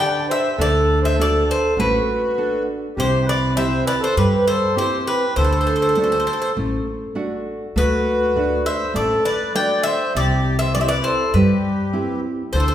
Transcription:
0.00 nylon-string guitar D4 G4 B4, accordion D5, bouzouki G5
0.29 accordion C5, bouzouki E5
0.58 upright bass D2, nylon-string guitar D3, accordion A4, bouzouki D5
1.02 accordion C5, bouzouki E5
1.16 nylon-string guitar D4, accordion A4
1.20 nylon-string guitar F#4 A4, bouzouki D5
1.45 accordion A4
1.51 bouzouki C5
1.77 upright bass A1, nylon-string guitar A3, accordion F#4, bouzouki B4
2.38 nylon-string guitar D4 F#4 A4
2.97 upright bass C2, nylon-string guitar C3, accordion G4, bouzouki C5
3.25 accordion B4
3.29 bouzouki D5
3.55 nylon-string guitar C4 E4 G4, accordion C5, bouzouki E5
3.86 accordion B4, bouzouki D5
4.00 accordion A4, bouzouki C5
4.17 upright bass G2, nylon-string guitar G3, accordion G4, bouzouki B4
4.47 accordion A4, bouzouki C5
4.75 nylon-string guitar C4 E4 G4, accordion G4, bouzouki C5
5.06 accordion G4, bouzouki B4
5.36 upright bass D2, nylon-string guitar D3, accordion A4, bouzouki C5
5.44 bouzouki C5
5.52 bouzouki C5
5.61 bouzouki C5
5.67 bouzouki C5
5.76 bouzouki C5
5.82 bouzouki C5
5.89 bouzouki C5
5.95 nylon-string guitar A3 D4 F#4, bouzouki C5
6.04 bouzouki C5
6.12 bouzouki C5
6.20 bouzouki C5
6.27 bouzouki C5
6.33 bouzouki C5
6.42 bouzouki C5
6.57 upright bass A1, nylon-string guitar A3
7.15 nylon-string guitar A3 D4 F#4
7.76 upright bass D2, nylon-string guitar A3, accordion F#4, bouzouki B4
8.36 nylon-string guitar A3 D4 F#4
8.66 accordion C5, bouzouki E5
8.94 upright bass A1, nylon-string guitar A3, accordion A4, bouzouki D5
9.24 accordion B4, bouzouki D5
9.55 nylon-string guitar A3 D4 F#4, accordion D5, bouzouki G5
9.83 accordion C5, bouzouki E5
10.15 upright bass C2, nylon-string guitar C3, accordion G4, bouzouki D5
10.59 accordion C5, bouzouki E5
10.75 nylon-string guitar C4 E4 G4, accordion G4, bouzouki D5
10.81 accordion C5, bouzouki E5
10.88 accordion B4, bouzouki D5
11.04 accordion A4, bouzouki C5
11.34 upright bass G2, nylon-string guitar G3, accordion G4, bouzouki B4
11.93 nylon-string guitar C4 E4 G4
12.53 upright bass D2, nylon-string guitar D3, accordion A4, bouzouki C5
12.60 bouzouki C5
12.68 bouzouki C5

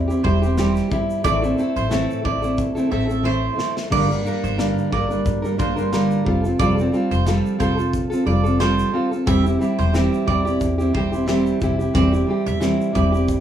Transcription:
Already playing: upright bass E2
0.08 steel-string acoustic guitar C4 E4 G4, shaker
0.23 upright bass E1, steel-string acoustic guitar G3 C4 E4 G4, mandolin C5, kick
0.42 steel-string acoustic guitar C4 E4 G4, shaker
0.57 steel-string acoustic guitar E3 G3 C4 E4 G4, snare, shaker
0.76 snare, shaker
0.90 upright bass G1, steel-string acoustic guitar G3 C4 E4 G4, kick, shaker
1.10 shaker
1.24 upright bass A1, steel-string acoustic guitar A2 E3 A3 C4 E4 A4, mandolin D5, kick, shaker
1.42 steel-string acoustic guitar A3 C4 E4 A4, shaker
1.57 steel-string acoustic guitar A3 C4 E4 A4, shaker
1.76 upright bass A1, mandolin C5, shaker
1.90 steel-string acoustic guitar A2 E3 A3 C4 E4 A4, snare, shaker
2.10 shaker
2.23 upright bass A1, steel-string acoustic guitar A3 C4 E4 A4, mandolin D5, kick
2.42 steel-string acoustic guitar A3 C4 E4 A4, shaker
2.58 kick, shaker
2.75 steel-string acoustic guitar A3 C4 E4 A4, shaker
2.89 upright bass A1, steel-string acoustic guitar A3 C4 E4 A4, mandolin E5
3.08 steel-string acoustic guitar A3 C4 E4 A4, shaker
3.23 steel-string acoustic guitar A2 E3 A3 C4 E4 A4, mandolin C5
3.56 steel-string acoustic guitar A3 C4 E4 A4, snare
3.77 snare
3.90 upright bass G1, steel-string acoustic guitar G2 D3 G3 A#3 D4 A#4, mandolin D5, kick, crash
4.09 steel-string acoustic guitar G3 A#3 D4 A#4, shaker
4.24 steel-string acoustic guitar G3 A#3 D4 A#4, shaker
4.44 upright bass G1, mandolin C5, shaker
4.56 steel-string acoustic guitar G2 D3 G3 A#3 D4 A#4, snare, shaker
4.78 shaker
4.91 upright bass G1, steel-string acoustic guitar G3 A#3 D4 A#4, mandolin D5, kick
5.09 steel-string acoustic guitar G3 A#3 D4 A#4, shaker
5.26 upright bass G2, kick, shaker
5.42 steel-string acoustic guitar G3 A#3 D4 A#4, shaker
5.57 upright bass G1, steel-string acoustic guitar G3 A#3 D4 A#4, mandolin C5, kick, shaker
5.76 steel-string acoustic guitar G3 A#3 D4 A#4, shaker
5.92 steel-string acoustic guitar G2 D3 G3 A#3 D4 A#4, snare, shaker
6.11 shaker
6.25 upright bass F1, steel-string acoustic guitar G3 C4 F4 A4, kick
6.44 steel-string acoustic guitar C4 F4 A4, shaker
6.59 upright bass F1, steel-string acoustic guitar F3 G3 C4 F4 A4, mandolin D5, kick, shaker
6.77 steel-string acoustic guitar C4 F4 A4, shaker
6.92 steel-string acoustic guitar G3 C4 F4 A4, shaker
7.11 upright bass F1, mandolin C5, shaker
7.26 steel-string acoustic guitar F3 G3 C4 F4 A4, snare, shaker
7.46 shaker
7.59 upright bass F1, steel-string acoustic guitar G3 C4 F4 A4, mandolin C5, kick, shaker
7.77 steel-string acoustic guitar C4 F4 A4, shaker
7.93 kick, shaker
8.10 steel-string acoustic guitar C4 F4 A4, shaker
8.26 upright bass F1, steel-string acoustic guitar G3 C4 F4 A4, mandolin D5
8.44 steel-string acoustic guitar C4 F4 A4, shaker
8.60 steel-string acoustic guitar F3 G3 C4 F4 A4, mandolin C5, snare, shaker
8.79 snare, shaker
8.92 steel-string acoustic guitar G3 C4 F4 A4
9.11 steel-string acoustic guitar C4 F4 A4, shaker
9.26 upright bass E1, steel-string acoustic guitar E3 G3 C4 E4 G4, mandolin E5, kick, shaker
9.44 steel-string acoustic guitar C4 E4 G4, shaker
9.59 steel-string acoustic guitar G3 C4 E4 G4, shaker
9.79 upright bass E1, mandolin C5, shaker
9.93 steel-string acoustic guitar E3 G3 C4 E4 G4, snare, shaker
10.13 shaker
10.26 upright bass E1, steel-string acoustic guitar G3 C4 E4 G4, mandolin D5, kick
10.45 steel-string acoustic guitar C4 E4 G4, shaker
10.61 upright bass E2, kick, shaker
10.78 steel-string acoustic guitar C4 E4 G4, shaker
10.93 upright bass E1, steel-string acoustic guitar G3 C4 E4 G4, mandolin C5, kick
11.12 steel-string acoustic guitar C4 E4 G4, shaker
11.26 steel-string acoustic guitar E3 G3 C4 E4 G4, snare, shaker
11.46 shaker
11.60 upright bass F1, steel-string acoustic guitar G3 C4 E4 G4, kick, shaker
11.79 steel-string acoustic guitar C4 E4 G4, shaker
11.94 upright bass E1, steel-string acoustic guitar E3 G3 C4 E4 G4, mandolin D5, kick, shaker
12.12 steel-string acoustic guitar C4 E4 G4, shaker
12.27 steel-string acoustic guitar G3 C4 E4 G4
12.46 upright bass E1, mandolin E5, shaker
12.60 steel-string acoustic guitar E3 G3 C4 E4 G4, snare, shaker
12.81 shaker
12.93 upright bass E1, steel-string acoustic guitar G3 C4 E4 G4, mandolin D5, kick, shaker
13.12 steel-string acoustic guitar C4 E4 G4, shaker
13.28 kick, shaker

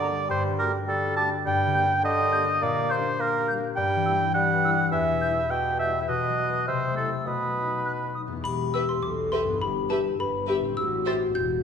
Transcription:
Already playing: harp G2 D3 G4 A#4, bassoon D3, oboe D5
0.01 french horn section A#3 G4, flute A#5
0.11 harp G3
0.29 harp G2, bassoon G3, oboe C5
0.50 harp D3
0.59 french horn section A3 F#4, oboe A#4, flute D6
0.69 harp D4
0.87 bassoon G3, harp F#4, oboe A4
1.08 harp A4
1.16 french horn section A3 F#4, oboe A5, flute D6
1.27 harp D4
1.45 harp G2, bassoon G3, oboe G5
1.66 harp D3
1.73 french horn section A#3 G4, flute G6
1.86 harp D4
2.04 bassoon D3, harp G4, oboe D#5
2.25 harp A#4
2.32 french horn section A#3 G4, flute G6
2.44 harp D4
2.62 harp A#2, bassoon A#3, oboe D5
2.82 harp A#3
2.90 french horn section G3 G4, oboe C5, flute G6
3.01 harp D4
3.19 bassoon A#3, harp G4, oboe A#4
3.39 harp A#4
3.48 french horn section G3 G4, flute G6
3.58 harp D4
3.76 harp G2, bassoon G3, oboe G5
3.96 harp E3
4.06 french horn section G3 E4, flute E6
4.15 harp E4
4.34 bassoon G3, harp G4, oboe F#5
4.53 harp B4
4.64 french horn section G3 E4, flute E6
4.73 harp E4
4.92 harp E2, bassoon E3, oboe E5
5.12 harp B2
5.21 french horn section G3 E4, flute G6
5.31 harp E4
5.50 bassoon B2, harp G4, oboe G5
5.71 harp B4
5.79 french horn section G3 E4, oboe E5, flute G6
5.90 harp E4
6.01 oboe E5
6.08 bassoon B2, harp B2, oboe D#5, flute F#6
6.29 harp F#3
6.37 french horn section F#3 F#4
6.49 harp F#4 B4
6.68 bassoon C3, harp C3, oboe C5, flute E6
6.88 harp A3
6.97 french horn section A3 E4, oboe A4
7.08 harp E4 A4
7.26 bassoon B2, harp B2, oboe B4, flute D#6
7.47 harp F#3
7.57 french horn section F#3 D#4
7.67 harp D#4
7.85 harp B4, flute F#6
8.06 harp F#4
8.15 french horn section F#3 D#4, flute D#6
8.27 harp E2 D#4
8.32 harp B3
8.37 harp E4
8.41 double bass section E1, cello section E2, harp G4, xylophone B5
8.45 french horn section G4, triangle
8.74 viola section G4, violin section B4 E5, xylophone E6
8.89 xylophone C6
9.03 double bass section B1, cello section B2, xylophone D6
9.07 french horn section A4
9.32 viola section G4, violin section B4 E5, xylophone C6
9.45 harp G2
9.49 harp B3
9.53 harp E4
9.58 double bass section G1, cello section G2, harp G4, xylophone B5
9.62 french horn section G4
9.89 viola section G4, violin section B4 E5, xylophone A5
10.20 double bass section G1, cello section G2, french horn section B4, xylophone B5
10.47 viola section G4, french horn section G4, violin section B4 E5
10.61 harp A2
10.65 harp C4
10.70 harp E4
10.74 double bass section A1, cello section A2, harp G4, xylophone E6
10.80 french horn section F#4
11.05 viola section G4, violin section C5 E5, xylophone A6
11.35 double bass section E1, cello section E2, xylophone G6

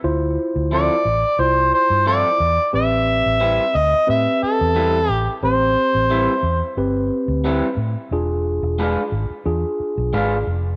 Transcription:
0.04 fingered electric bass D2, tine electric piano E4 F4 C5
0.56 fingered electric bass D2
0.71 clean electric guitar F3 C4 E4 A4, harmonica D5
1.05 fingered electric bass A1
1.39 fingered electric bass C2, tine electric piano E4 F4 C5, harmonica C5
1.74 harmonica C5
1.90 fingered electric bass G2
2.06 clean electric guitar F3 C4 E4 A4, harmonica D5
2.40 fingered electric bass E2
2.73 fingered electric bass A1, tine electric piano C4 G4 B4, harmonica E5
3.26 fingered electric bass A1
3.40 clean electric guitar G3 C4 E4 B4
3.75 fingered electric bass D2, harmonica D#5
3.94 muted fingered electric bass stroke
4.07 fingered electric bass A2, tine electric piano C4 G4 B4, harmonica E5
4.43 harmonica A4, muted fingered electric bass stroke
4.61 fingered electric bass E2
4.75 clean electric guitar G3 C4 E4 B4
5.09 fingered electric bass A1, harmonica G4
5.43 fingered electric bass A1, tine electric piano C4 G4 C5, harmonica C5
5.95 fingered electric bass A1
6.10 clean electric guitar G3 C4 E4 B4
6.43 fingered electric bass E2
6.77 fingered electric bass G1, tine electric piano C4 G4 B4
7.28 fingered electric bass D2
7.44 clean electric guitar G3 C4 E4 B4
7.77 fingered electric bass A2
8.11 fingered electric bass E1, tine electric piano D4 F4 G#4
8.63 fingered electric bass E1
8.78 clean electric guitar G#3 D4 F4 B4
9.12 fingered electric bass G#1
9.30 muted fingered electric bass stroke
9.45 fingered electric bass E2, tine electric piano D4 F4 G#4
9.80 muted fingered electric bass stroke
9.98 fingered electric bass B1
10.13 fingered electric bass G#1, clean electric guitar G#3 D4 F4 B4
10.47 fingered electric bass F1

